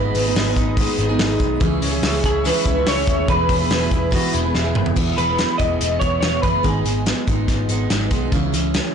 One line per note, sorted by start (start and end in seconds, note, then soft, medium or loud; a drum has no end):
0.00 0.11 G#1 loud
0.00 1.61 G#2 medium
0.00 0.25 G#3 medium
0.00 0.35 G#3 medium
0.00 0.26 B3 medium
0.00 0.26 D#4 medium
0.00 0.24 G#4 medium
0.00 4.92 G#4 medium
0.00 0.53 B4 medium
0.00 1.59 D#5 medium
0.00 1.57 B5 medium
0.00 1.59 D#6 loud
0.14 0.32 G#1 loud
0.14 0.97 B3 medium
0.14 hi-hat pedal medium
0.14 open hi-hat medium
0.26 0.48 G#3 soft
0.26 0.47 B3 medium
0.26 0.46 D#4 medium
0.26 0.45 G#4 medium
0.35 0.52 G#1 loud
0.35 2.02 G#3 medium
0.35 snare loud
0.35 hi-hat pedal medium
0.35 open hi-hat medium
0.46 0.77 G#3 medium
0.46 0.78 B3 medium
0.46 0.78 D#4 medium
0.46 0.77 G#4 medium
0.56 0.82 G#1 loud
0.56 1.18 D#4 medium
0.56 kick medium
0.56 hi-hat pedal medium
0.56 open hi-hat medium
0.77 1.60 D#3 medium
0.77 1.09 G#3 medium
0.77 1.09 B3 medium
0.77 1.09 D#4 medium
0.77 kick medium
0.77 hi-hat pedal medium
0.77 open hi-hat loud
0.81 1.08 G#4 medium
0.98 1.15 G#1 loud
0.98 1.39 B3 medium
0.98 hi-hat pedal medium
0.98 open hi-hat medium
1.09 1.31 G#3 soft
1.09 1.30 B3 medium
1.09 1.29 D#4 medium
1.09 1.28 G#4 medium
1.19 1.36 G#1 loud
1.19 1.65 D#4 medium
1.19 snare loud
1.19 hi-hat pedal medium
1.19 open hi-hat medium
1.29 1.60 G#3 soft
1.29 1.61 B3 medium
1.29 1.61 D#4 medium
1.29 1.61 G#4 medium
1.40 1.57 B1 medium
1.40 1.65 B3 medium
1.40 kick medium
1.40 hi-hat pedal medium
1.40 open hi-hat medium
1.60 1.78 C#2 loud
1.60 3.28 C#3 medium
1.60 1.92 E3 medium
1.60 1.92 C#4 medium
1.60 1.92 E4 medium
1.60 1.90 G#4 medium
1.60 4.93 E5 medium
1.60 3.27 C#6 medium
1.60 4.92 E6 medium
1.60 kick loud
1.60 hi-hat pedal medium
1.60 open hi-hat medium
1.81 1.99 C#2 medium
1.81 2.64 C#4 medium
1.81 hi-hat pedal medium
1.81 open hi-hat medium
1.91 2.14 C#4 medium
1.91 2.12 E4 medium
1.91 2.10 G#4 medium
2.02 2.20 C#2 loud
2.02 2.44 G#3 medium
2.02 snare loud
2.02 hi-hat pedal medium
2.02 open hi-hat medium
2.12 2.44 C#4 soft
2.12 2.45 E4 medium
2.12 2.44 G#4 medium
2.23 2.50 C#2 loud
2.23 2.86 E4 medium
2.23 2.46 G#4 medium
2.23 kick medium
2.23 hi-hat pedal medium
2.23 open hi-hat medium
2.44 2.76 E3 medium
2.44 3.70 G#3 medium
2.44 2.76 C#4 medium
2.44 2.75 E4 medium
2.44 2.74 G#4 medium
2.44 2.89 B4 loud
2.44 snare soft
2.44 hi-hat pedal medium
2.44 open hi-hat loud
2.65 2.83 C#2 medium
2.65 3.06 C#4 medium
2.65 kick medium
2.65 hi-hat pedal medium
2.65 open hi-hat medium
2.75 2.98 C#4 soft
2.75 2.97 E4 medium
2.75 2.96 G#4 medium
2.86 3.03 C#2 loud
2.86 3.91 E4 medium
2.86 3.29 C#5 loud
2.86 snare loud
2.86 hi-hat pedal medium
2.86 open hi-hat medium
2.98 3.29 C#4 soft
2.98 3.29 E4 soft
2.98 3.29 G#4 medium
3.07 3.25 D#2 medium
3.07 3.32 C#4 medium
3.07 kick loud
3.07 hi-hat pedal medium
3.07 open hi-hat medium
3.28 3.46 E1 loud
3.28 3.60 E3 medium
3.28 4.96 E3 medium
3.28 3.60 B3 medium
3.28 3.61 E4 medium
3.28 3.59 G#4 medium
3.28 4.51 B4 medium
3.28 4.94 B5 medium
3.28 kick loud
3.28 hi-hat pedal medium
3.28 open hi-hat medium
3.49 3.66 E1 medium
3.49 4.33 B3 medium
3.49 3.59 C#4 medium
3.49 kick medium
3.49 hi-hat pedal medium
3.49 open hi-hat medium
3.60 3.83 B3 soft
3.60 3.81 E4 medium
3.60 3.79 G#4 medium
3.70 3.88 E1 loud
3.70 4.12 G#3 medium
3.70 4.14 E4 loud
3.70 snare loud
3.70 hi-hat pedal medium
3.70 open hi-hat medium
3.80 4.11 B3 soft
3.80 4.12 E4 medium
3.80 4.12 G#4 medium
3.91 4.17 E1 loud
3.91 4.54 E4 medium
3.91 kick medium
3.91 hi-hat pedal medium
3.91 open hi-hat medium
4.11 4.43 E3 medium
4.11 5.18 G#3 medium
4.11 4.44 B3 medium
4.11 4.43 E4 medium
4.11 4.34 F#4 loud
4.11 4.42 G#4 medium
4.11 kick medium
4.11 snare soft
4.11 hi-hat pedal medium
4.11 open hi-hat loud
4.32 4.51 E1 medium
4.32 4.75 B3 medium
4.32 4.91 E4 medium
4.32 hi-hat pedal medium
4.32 open hi-hat medium
4.43 4.66 B3 medium
4.43 4.65 E4 medium
4.43 4.63 G#4 medium
4.55 4.76 E1 medium
4.55 5.00 E4 medium
4.55 snare medium
4.64 4.96 B3 soft
4.64 4.96 E4 medium
4.64 4.96 G#4 medium
4.75 4.93 F#1 medium
4.75 5.38 B3 medium
4.75 mid tom medium
4.86 floor tom medium
4.96 5.13 E1 loud
4.96 5.15 E3 medium
4.96 6.65 E3 medium
4.96 5.15 B3 medium
4.96 5.17 E4 medium
4.96 5.17 G#4 medium
4.96 kick loud
4.96 crash medium
5.16 5.43 E1 medium
5.16 5.58 E3 medium
5.16 6.44 G#3 medium
5.16 5.59 B3 medium
5.16 5.59 E4 medium
5.16 5.61 G#4 medium
5.16 5.58 B4 medium
5.16 closed hi-hat medium
5.39 5.81 B3 medium
5.39 snare medium
5.39 closed hi-hat medium
5.58 5.77 E1 medium
5.58 6.00 E3 medium
5.58 6.02 B3 medium
5.58 6.01 E4 medium
5.58 6.02 E4 medium
5.58 6.04 G#4 medium
5.58 5.99 D#5 loud
5.58 kick medium
5.58 closed hi-hat medium
5.81 5.97 E1 loud
5.81 5.92 A3 medium
5.81 closed hi-hat medium
5.92 6.22 B3 medium
6.00 6.18 E1 medium
6.00 6.21 E3 medium
6.00 6.22 B3 medium
6.00 6.69 E4 medium
6.00 6.23 E4 medium
6.00 6.19 C#5 loud
6.00 kick medium
6.00 closed hi-hat medium
6.04 6.23 G#4 medium
6.20 6.39 E1 medium
6.20 6.41 E3 medium
6.20 6.43 B3 medium
6.20 6.69 B3 medium
6.20 6.44 E4 medium
6.20 6.42 C#5 medium
6.20 snare loud
6.20 closed hi-hat medium
6.26 6.45 G#4 medium
6.42 6.60 F#1 medium
6.42 6.64 E3 medium
6.42 6.85 G#3 medium
6.42 6.63 B3 medium
6.42 6.65 E4 medium
6.42 6.64 G#4 medium
6.42 6.64 B4 medium
6.42 kick medium
6.42 closed hi-hat medium
6.63 6.81 G#1 loud
6.63 6.85 G#2 medium
6.63 8.32 G#2 medium
6.63 6.85 D#3 medium
6.63 6.84 G#3 medium
6.63 6.85 B3 medium
6.63 6.86 D#4 medium
6.63 7.03 G#4 medium
6.63 6.85 G#4 medium
6.63 kick loud
6.63 closed hi-hat medium
6.85 7.11 G#1 medium
6.85 7.27 G#3 medium
6.85 8.11 G#3 medium
6.85 7.26 B3 medium
6.85 7.28 D#4 medium
6.85 7.29 G#4 medium
6.85 closed hi-hat medium
7.06 7.47 B3 medium
7.06 snare loud
7.06 closed hi-hat medium
7.27 7.45 G#1 medium
7.27 7.69 G#3 medium
7.27 7.69 B3 medium
7.27 7.68 D#4 medium
7.27 7.70 D#4 medium
7.27 7.72 G#4 medium
7.27 kick medium
7.27 closed hi-hat medium
7.48 7.65 G#1 medium
7.48 7.89 B3 medium
7.48 kick medium
7.48 snare soft
7.48 closed hi-hat medium
7.68 7.86 G#1 medium
7.68 7.90 G#3 medium
7.68 7.90 B3 medium
7.68 8.37 D#4 medium
7.68 7.91 D#4 medium
7.68 closed hi-hat medium
7.72 7.92 G#4 medium
7.90 8.07 G#1 loud
7.90 8.09 G#3 medium
7.90 8.37 B3 medium
7.90 8.11 B3 medium
7.90 8.12 D#4 medium
7.90 8.13 G#4 medium
7.90 snare loud
7.90 closed hi-hat medium
8.11 8.28 B1 medium
8.11 8.32 G#3 medium
8.11 8.53 G#3 medium
8.11 8.32 B3 medium
8.11 8.33 D#4 medium
8.11 8.33 G#4 medium
8.11 kick medium
8.11 closed hi-hat medium
8.32 8.49 C#2 loud
8.32 8.53 C#3 medium
8.32 8.95 C#3 medium
8.32 8.51 E3 medium
8.32 8.53 C#4 loud
8.32 8.53 E4 loud
8.32 8.54 G#4 loud
8.32 kick loud
8.32 closed hi-hat medium
8.52 8.78 C#2 medium
8.52 8.93 E3 medium
8.52 8.95 G#3 medium
8.52 8.94 C#4 medium
8.52 8.95 E4 medium
8.52 8.95 G#4 medium
8.52 closed hi-hat medium
8.74 8.95 C#4 medium
8.74 snare loud
8.74 closed hi-hat medium